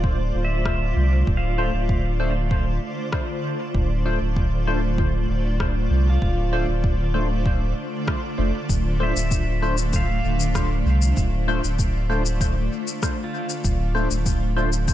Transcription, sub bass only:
0.00 0.32 D1 medium
0.35 0.94 D1 medium
0.96 1.24 C2 medium
1.27 1.71 D1 medium
1.73 2.79 D1 medium
3.75 4.18 D1 loud
4.21 5.26 D1 medium
5.29 5.88 D1 medium
5.91 6.18 C2 medium
6.22 6.66 D1 medium
6.68 7.74 D1 medium
8.39 8.53 F1 medium
8.69 9.13 D1 medium
9.16 10.21 D1 medium
10.25 10.83 D1 medium
10.86 11.13 C2 medium
11.17 11.61 D1 medium
11.64 12.69 D1 medium
13.65 14.08 D1 loud
14.11 14.94 D1 medium

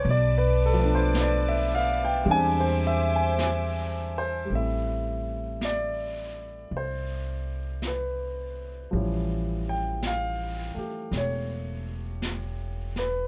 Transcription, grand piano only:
0.10 0.43 D5 medium
0.38 0.75 B4 medium
0.66 0.89 A4 medium
0.73 2.23 F3 medium
0.73 2.25 A3 soft
0.81 2.27 B3 medium
0.81 2.28 D4 medium
0.95 1.13 C5 medium
1.21 1.54 D5 medium
1.48 1.86 E5 medium
1.75 2.00 F5 medium
2.05 2.24 G5 medium
2.25 4.44 G3 medium
2.25 4.50 G#3 medium
2.25 4.51 C4 medium
2.29 4.52 D4 medium
2.29 2.65 G#5 loud
2.60 2.99 C5 medium
2.87 3.12 E5 loud
3.16 4.26 G#5 medium
4.18 4.50 C5 medium
4.45 8.91 G3 soft
4.45 8.93 A3 soft
4.53 8.94 C4 soft
4.53 8.96 E4 soft
4.53 5.60 E5 medium
5.65 6.77 D5 medium
6.77 7.88 C5 medium
7.87 8.73 B4 medium
8.91 13.28 F3 soft
8.91 13.28 G3 soft
8.91 13.28 C#4 soft
8.95 13.28 E3 soft
9.69 10.05 G5 medium
10.07 11.18 F5 medium
10.74 13.28 A3 soft
10.74 13.28 G4 soft
11.17 12.21 C#5 medium
12.99 13.28 B4 medium

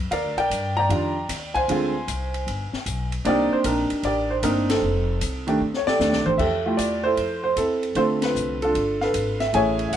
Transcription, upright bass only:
0.00 0.10 F#2 medium
0.11 0.24 D#2 medium
0.24 0.36 D2 medium
0.37 0.49 A#1 medium
0.50 0.88 G2 medium
0.89 1.28 F2 medium
1.29 1.67 D#2 medium
1.68 2.06 D2 medium
2.07 2.46 C2 medium
2.47 2.71 G1 medium
2.72 muted upright bass stroke soft
2.86 3.24 B1 medium
3.25 3.49 C2 loud
3.52 muted upright bass stroke soft
3.64 3.89 A#1 medium
3.91 muted upright bass stroke soft
4.03 4.41 A1 medium
4.43 4.81 G1 medium
4.82 5.20 F1 medium
5.21 5.59 C2 medium
5.60 5.85 D2 medium
5.87 muted upright bass stroke soft
5.99 6.12 D#2 medium
6.12 6.24 C2 medium
6.25 6.37 A1 medium
6.39 6.77 F2 medium
6.78 7.16 E2 medium
7.17 7.55 F2 medium
7.57 7.95 E2 medium
7.95 8.34 D2 medium
8.35 8.73 C2 medium
8.75 9.12 G1 medium
9.14 9.52 G#1 medium
9.53 9.91 A1 medium
9.92 9.97 B1 medium

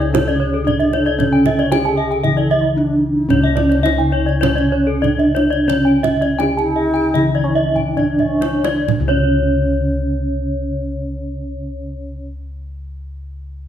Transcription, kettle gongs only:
0.00 2.23 C#2 medium
0.00 0.62 C#4 medium
0.66 0.74 D4 soft
1.19 2.73 C#4 medium
1.71 1.79 D4 soft
2.24 3.80 C#3 medium
2.77 2.85 D4 medium
3.29 4.98 C#4 medium
3.34 7.13 C#2 loud
3.84 3.92 D4 soft
5.03 5.11 D4 medium
5.68 7.94 C#4 medium
6.39 6.47 D4 soft
7.14 9.81 C#3 medium
7.97 8.05 D4 soft
9.00 12.16 C#2 medium

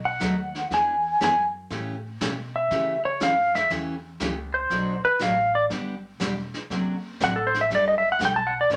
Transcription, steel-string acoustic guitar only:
0.20 0.33 B2 medium
0.20 0.33 F#3 medium
0.20 0.33 A3 medium
0.20 0.33 D#4 medium
0.20 0.33 F#4 medium
0.71 0.94 E3 soft
0.71 0.94 B3 medium
0.71 0.94 D4 medium
0.71 0.94 G#4 medium
1.21 1.33 E3 medium
1.21 1.33 B3 medium
1.21 1.33 D4 medium
1.21 1.33 G#4 medium
1.70 1.94 C#3 medium
1.70 1.94 E3 medium
1.70 1.94 A3 medium
1.70 1.94 C#4 medium
1.70 1.94 G4 medium
2.21 2.33 C#3 medium
2.21 2.33 E3 medium
2.21 2.33 A3 medium
2.21 2.33 C#4 medium
2.21 2.33 G4 medium
2.71 2.94 C#3 medium
2.71 2.94 E3 medium
2.71 2.94 A3 medium
2.71 2.94 C#4 medium
2.71 2.94 G4 medium
3.20 3.33 C#3 medium
3.20 3.33 E3 medium
3.20 3.33 A3 medium
3.20 3.33 C#4 medium
3.20 3.34 G4 medium
3.70 3.93 C#3 medium
3.70 3.93 E3 medium
3.70 3.94 A3 medium
3.70 3.94 C#4 medium
3.70 3.94 G4 medium
4.21 4.33 C#3 medium
4.21 4.33 E3 medium
4.21 4.33 A3 medium
4.21 4.33 C#4 medium
4.21 4.34 G4 medium
4.71 4.94 B2 medium
4.71 4.94 F#3 soft
4.71 4.94 A3 medium
4.71 4.94 D4 medium
4.71 4.94 F#4 medium
5.19 5.32 B2 medium
5.19 5.32 F#3 medium
5.19 5.32 A3 medium
5.19 5.32 D4 medium
5.19 5.33 F#4 medium
5.71 5.93 D3 medium
5.71 5.93 G3 medium
5.71 5.94 B3 medium
5.71 5.94 D4 medium
5.71 5.94 G4 medium
6.20 6.32 D3 medium
6.20 6.32 G3 medium
6.20 6.33 B3 medium
6.20 6.33 D4 medium
6.20 6.33 G4 medium
6.71 6.94 C3 medium
6.71 6.94 F#3 medium
6.71 6.94 A3 medium
6.71 6.94 D4 medium
6.71 6.94 F#4 medium
7.20 7.32 C3 medium
7.20 7.32 F#3 medium
7.20 7.33 A3 medium
7.20 7.33 D4 medium
7.20 7.33 F#4 medium
7.71 7.93 G3 medium
7.71 7.94 A3 medium
7.71 7.94 D4 medium
7.71 7.94 A4 medium
8.19 8.32 G3 medium
8.19 8.32 A3 medium
8.19 8.32 D4 medium
8.19 8.32 A4 medium
8.70 8.77 C#3 medium
8.70 8.77 E3 medium
8.70 8.77 A3 medium
8.70 8.77 C#4 medium
8.70 8.77 A4 medium

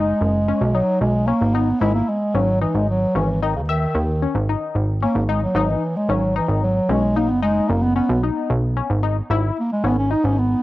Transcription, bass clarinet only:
0.00 0.76 G#3 medium
0.75 1.00 F#3 medium
1.01 1.28 G#3 medium
1.27 1.56 A#3 medium
1.54 1.82 B3 medium
1.81 1.94 G#3 loud
1.94 2.10 A#3 medium
2.08 2.36 G#3 medium
2.35 2.61 F#3 medium
2.62 2.77 E3 medium
2.76 2.89 G#3 medium
2.89 3.14 F#3 medium
3.16 3.41 E3 medium
3.42 3.55 D#3 medium
3.56 3.62 C#3 medium
3.69 4.45 D#3 medium
5.03 5.24 A#3 medium
5.26 5.42 G#3 medium
5.26 5.31 A#3 medium
5.43 5.71 F#3 medium
5.70 5.98 E3 medium
5.96 6.10 G#3 medium
6.10 6.35 F#3 medium
6.37 6.50 E3 medium
6.49 6.63 D#3 medium
6.63 6.91 F#3 medium
6.90 7.19 G#3 medium
7.17 7.31 A#3 medium
7.29 7.42 B3 medium
7.43 7.70 G#3 loud
7.68 7.84 A#3 medium
7.83 7.95 B3 loud
7.96 8.21 B3 medium
9.59 9.71 A#3 medium
9.72 9.84 G#3 medium
9.85 9.97 B3 medium
9.98 10.10 C#4 medium
10.12 10.26 D#4 medium
10.25 10.40 C#4 medium
10.38 10.63 B3 medium

